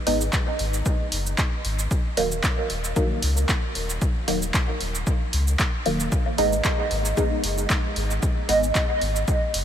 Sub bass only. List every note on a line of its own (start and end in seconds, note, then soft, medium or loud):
0.07 0.29 G#1 loud
0.59 0.82 G#1 medium
1.12 1.34 F#1 medium
1.65 1.87 G#1 medium
2.17 2.39 D#1 loud
2.70 2.92 D#1 medium
3.23 3.45 C#2 medium
3.75 3.97 D#1 medium
4.28 4.50 D#1 loud
4.81 5.03 D#1 loud
5.33 5.55 C#2 medium
5.86 6.08 D#1 medium
6.38 6.60 G#1 loud
6.91 7.13 G#1 loud
7.43 7.66 F#1 medium
7.96 8.18 G#1 medium
8.49 8.71 G#1 loud
9.01 9.24 G#1 medium
9.54 9.64 F#1 medium